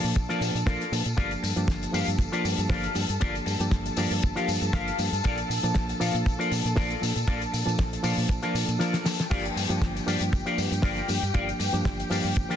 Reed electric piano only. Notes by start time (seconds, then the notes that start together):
Already playing: F3 A#3 D4 A5
0.29 F3 A#3 D4 A5
0.66 F3 A#3 D4 A#4
0.92 F3 A#3 D4 A4
1.17 F3 A#3 D4 G4
1.56 F3 A#3 D4 G4
1.92 F3 A#3 D4 G4
2.32 F3 A#3 D4 G4
2.69 F3 A#3 D4 A4
2.94 F3 A#3 D4 G4
3.20 F3 A#3 D4 G4
3.60 F3 A#3 D4 G4
3.97 F3 A#3 D4 G4
4.35 F3 A#3 D4 G4
4.73 F3 A#3 D4 A4
4.99 F3 A#3 D4 G4
5.24 F3 A#3 D4 A5
5.63 F3 A#3 D4 A5
6.00 F3 A#3 D4 A5
6.39 F3 A#3 D4 A5
6.76 F3 A#3 D4 A#4
7.01 F3 A#3 D4 A4
7.26 F3 A#3 D4 A5
7.66 F3 A#3 D4 A5
8.03 F3 A#3 D4 A5
8.43 F3 A#3 D4 A5
8.79 F3 A#3 D4 A#4
9.04 F3 A#3 D4 A4
9.30 F3 A#3 D4 G4
9.69 F3 A#3 D4 G4
10.06 F3 A#3 D4 G4
10.45 F3 A#3 D4 G4
10.83 F3 A#3 D4 A4
11.08 F3 A#3 D4 G4
11.34 F3 A#3 D4 G4
11.72 F3 A#3 D4 G4
12.10 F3 A#3 D4 G4
12.49 F3 A#3 D4 G4